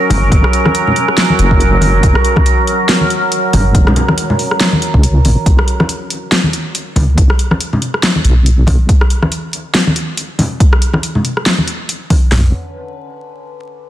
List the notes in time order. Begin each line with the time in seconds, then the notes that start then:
Already playing: F#3 C#4 A#4
0.10 G1, open hi-hat, high conga, low conga
0.32 F#1, kick, closed hi-hat
0.44 cross-stick
0.53 closed hi-hat
0.66 cross-stick, high conga
0.75 closed hi-hat
0.87 low conga
0.96 closed hi-hat
1.08 cross-stick
1.18 snare, closed hi-hat
1.30 high conga
1.39 F#1, closed hi-hat
1.51 kick
1.60 closed hi-hat
1.81 open hi-hat, high conga
2.03 F#1, kick, closed hi-hat
2.15 cross-stick
2.25 closed hi-hat
2.36 kick, cross-stick, high conga
2.46 closed hi-hat
2.67 closed hi-hat
2.89 snare, closed hi-hat
3.01 high conga
3.10 closed hi-hat
3.32 closed hi-hat
3.53 G1, open hi-hat, high conga, low conga
3.75 F#1, kick, closed hi-hat
3.87 cross-stick, low conga
3.96 closed hi-hat, low conga
4.08 cross-stick, high conga
4.18 closed hi-hat
4.30 low conga
4.39 open hi-hat
4.51 cross-stick
4.60 snare, closed hi-hat
4.73 high conga
4.82 closed hi-hat
4.94 C#2, kick
5.03 closed hi-hat
5.25 A#1, open hi-hat, high conga
5.46 B1, kick, closed hi-hat
5.59 cross-stick
5.68 closed hi-hat
5.80 cross-stick, high conga
5.89 closed hi-hat
6.10 closed hi-hat
6.32 snare, closed hi-hat
6.44 high conga
6.53 closed hi-hat
6.75 closed hi-hat
6.96 C#2, open hi-hat, high conga, low conga
7.18 B1, kick, closed hi-hat
7.30 cross-stick
7.39 closed hi-hat
7.51 cross-stick, high conga
7.61 closed hi-hat
7.73 low conga
7.82 closed hi-hat
7.94 cross-stick
8.03 snare, closed hi-hat
8.16 high conga
8.25 B1, closed hi-hat
8.46 closed hi-hat
8.67 kick, open hi-hat, high conga
8.89 kick, closed hi-hat
9.01 cross-stick
9.10 closed hi-hat
9.22 cross-stick, high conga
9.32 closed hi-hat
9.53 closed hi-hat
9.75 snare, closed hi-hat
9.87 high conga
9.96 closed hi-hat
10.17 closed hi-hat
10.39 open hi-hat, high conga, low conga
10.60 kick, closed hi-hat
10.73 cross-stick
10.82 closed hi-hat
10.93 cross-stick, high conga
11.03 closed hi-hat
11.15 low conga
11.25 closed hi-hat
11.37 cross-stick
11.46 snare, closed hi-hat
11.58 high conga
11.68 closed hi-hat
11.89 closed hi-hat
12.10 kick, open hi-hat, high conga
12.32 B1, snare, floor tom, open hi-hat